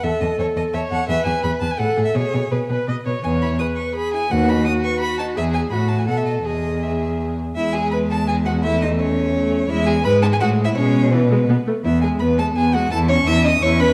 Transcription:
<<
  \new Staff \with { instrumentName = "Violin" } { \time 3/4 \key e \major \tempo 4 = 168 e''8 dis''8 cis''8 dis''8 e''8 fis''8 | e''8 gis''8 b''8 a''16 gis''16 \tuplet 3/2 { fis''4 e''8 } | cis''4 b'4. r8 | gis''8 b''8 dis'''8 cis'''8 b''8 gis''8 |
fis''8 b''8 dis'''8 cis'''8 b''8 a''8 | e''8 gis''8 b''8 a''16 gis''16 fis''16 e''16 dis''8 | dis''4 e''4 r4 | e''8 gis''8 b''8 a''8 gis''8 fis''8 |
e''8 dis''8 cis''2 | e''8 gis''8 b''8 a''16 gis''16 \tuplet 3/2 { fis''4 e''8 } | cis''4 b'4. r8 | e''8 gis''8 b''8 a''8 gis''8 fis''8 |
a''8 cis'''8 e'''8 dis'''8 cis'''8 b''8 | }
  \new Staff \with { instrumentName = "Violin" } { \time 3/4 \key e \major a'8 a'8 a'8 a'8 a'8 a'8 | gis'8 gis'8 gis'8 gis'8 gis'8 gis'8 | gis'8 gis'8 gis'8 gis'8 b'8 b'8 | b8 e'8 gis'8 b'8 gis'8 e'8 |
b8 dis'8 fis'8 b'8 fis'8 dis'8 | gis'4 fis'4 a'4 | gis'4 gis'4. r8 | e'8 gis'8 b'8 a'8 gis'8 fis'8 |
e'8 dis'8 cis'2 | e'8 gis'8 b'8 a'16 gis'16 \tuplet 3/2 { fis'4 e'8 } | cis'4 b4. r8 | e'8 gis'8 b'8 a'8 gis'8 fis'8 |
a'8 cis''8 e''8 dis''8 cis''8 b'8 | }
  \new Staff \with { instrumentName = "Viola" } { \time 3/4 \key e \major a'2 cis''4 | b'2 a'4 | gis'4 gis'8 b'8 dis''8 cis''8 | cis''4 b'4 gis'4 |
fis'2. | gis'4 fis'4 a'4 | gis'2~ gis'8 r8 | gis2. |
a2 a4 | gis4 gis4 gis4 | gis4 e8 gis8 b8 a8 | b8 gis8 b8 gis8 b8 gis8 |
e'8 cis'8 e'8 cis'8 e'8 cis'8 | }
  \new Staff \with { instrumentName = "Cello" } { \clef bass \time 3/4 \key e \major e,8 e,8 e,8 e,8 e,8 e,8 | e,8 e,8 e,8 e,8 a,8 a,8 | b,8 b,8 b,8 b,8 b,8 b,8 | e,4 r2 |
dis,4 r2 | e,4 a,4 b,4 | e,2~ e,8 r8 | e,2.~ |
e,2. | e,4 gis,4 a,4 | b,2 b,8 r8 | e,4 e,4 e,4 |
e,4 e,4 e,4 | }
>>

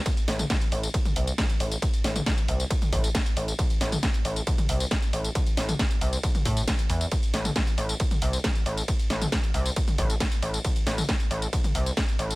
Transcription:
<<
  \new Staff \with { instrumentName = "Analog synth bass" } { \clef bass \time 4/4 \key a \minor \tempo 4 = 136 r8 a,,8 r8 a,,8 r8 c,8 r8 a,,8 | r8 a,,8 r8 c,8 r8 a,,8 r8 a,,8 | r8 a,,8 r8 a,,8 r8 c,8 r8 a,,8 | r8 a,,8 r8 c,8 r8 a,8 r8 e,8 |
r8 a,,8 r8 a,,8 r8 c,8 r8 a,,8 | r8 a,,8 r8 c,8 r8 a,,8 r8 a,,8 | r8 a,,8 r8 a,,8 r8 c,8 r8 a,,8 | }
  \new DrumStaff \with { instrumentName = "Drums" } \drummode { \time 4/4 <hh bd cymr tamb>16 <hh tamb>16 <hho sn>16 <hh tamb toml>16 <hh bd cymr sn tamb>16 <hh tamb>16 hho16 <hh tamb>16 <hh bd cymr tamb>16 <hh tamb toml>16 hho16 <hh tamb>16 <hh bd cymr sn tamb>16 <hh tamb>16 hho16 <hh tamb>16 | <hh bd cymr tamb>16 <hh tamb>16 <hho sn>16 <hh tamb toml>16 <hh bd cymr sn tamb>16 <hh tamb>16 hho16 <hh tamb>16 <hh bd cymr tamb>16 <hh tamb toml>16 <hho bd>16 <hh tamb>16 <hh bd cymr sn tamb>16 <hh tamb>16 hho16 <hh tamb>16 | <hh bd cymr tamb>16 <hh tamb>16 <hho sn>16 <hh tamb toml>16 <hh bd cymr sn tamb>16 <hh tamb>16 hho16 <hh tamb>16 <hh bd cymr tamb>16 <hh tamb toml>16 hho16 <hh tamb>16 <hh bd cymr sn tamb>16 <hh tamb>16 hho16 <hh tamb>16 | <hh bd cymr tamb>16 <hh tamb>16 <hho sn>16 <hh tamb toml>16 <hh bd cymr sn tamb>16 <hh tamb>16 hho16 <hh tamb>16 <hh bd cymr tamb>16 <hh tamb toml>16 <hho bd>16 <hh tamb>16 <hh bd cymr sn tamb>16 <hh tamb>16 hho16 <hh tamb>16 |
<hh bd cymr tamb>16 <hh tamb>16 <hho sn>16 <hh tamb toml>16 <hh bd cymr sn tamb>16 <hh tamb>16 hho16 <hh tamb>16 <hh bd cymr tamb>16 <hh tamb toml>16 hho16 <hh tamb>16 <hh bd cymr sn tamb>16 <hh tamb>16 hho16 <hh tamb>16 | <hh bd cymr tamb>16 <hh tamb>16 <hho sn>16 <hh tamb toml>16 <hh bd cymr sn tamb>16 <hh tamb>16 hho16 <hh tamb>16 <hh bd cymr tamb>16 <hh tamb toml>16 <hho bd>16 <hh tamb>16 <hh bd cymr sn tamb>16 <hh tamb>16 hho16 <hh tamb>16 | <hh bd cymr tamb>16 <hh tamb>16 <hho sn>16 <hh tamb toml>16 <hh bd cymr sn>16 <hh tamb>16 hho16 <hh tamb>16 <hh bd cymr tamb>16 <hh tamb toml>16 hho16 <hh tamb>16 <hh bd cymr sn tamb>16 <hh tamb>16 hho16 <hh tamb>16 | }
>>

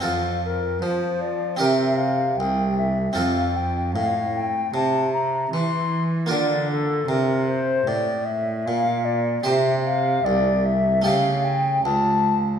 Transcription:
<<
  \new Staff \with { instrumentName = "Flute" } { \time 4/4 \key f \major \tempo 4 = 76 f''8 bes'8 c''8 d''8 e''8 f''8 g''8 e''8 | f''8 g''8 f''8 g''8 a''8 bes''8 c'''8 r8 | \key bes \lydian d''8 a'8 bes'8 c''8 d''8 e''8 f''8 d''8 | e''8 f''8 d''8 e''8 f''8 g''8 a''4 | }
  \new Staff \with { instrumentName = "Harpsichord" } { \time 4/4 \key f \major <c' f' a'>2 <c' g' bes'>2 | <c' f' a'>1 | \key bes \lydian <bes f' bes'>1 | <g' c''>2 <a g' a'>2 | }
  \new Staff \with { instrumentName = "Harpsichord" } { \clef bass \time 4/4 \key f \major f,4 f4 c4 c,4 | f,4 a,4 c4 e4 | \key bes \lydian d4 c4 a,4 bes,4 | c4 c,4 cis4 cis,4 | }
  \new Staff \with { instrumentName = "Cello" } { \clef bass \time 4/4 \key f \major f,4 f4 c4 c,4 | f,4 a,4 c4 e4 | \key bes \lydian d4 c4 a,4 bes,4 | c4 c,4 cis4 cis,4 | }
>>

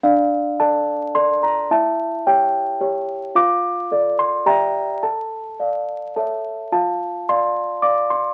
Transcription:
\new Staff \with { instrumentName = "Celesta" } { \time 3/4 \key d \minor \tempo 4 = 108 << { f''4 a''4 c'''8 bes''8 | a''4 g''4. r8 | d'''4. c'''8 bes''4 | a''2~ a''8 r8 |
a''4 c'''4 d'''8 c'''8 | } \\ { <d' d''>4 <a' d''>4 <a' d''>4 | <e' e''>4 <g' cis''>4 <g' cis''>4 | <f' f''>4 <a' d''>4 <g' d'' e'' g''>4 | a'4 <d'' f''>4 <a' cis'' e'' a''>4 |
<f' f''>4 <d'' f''>4 <d'' f''>4 | } >> }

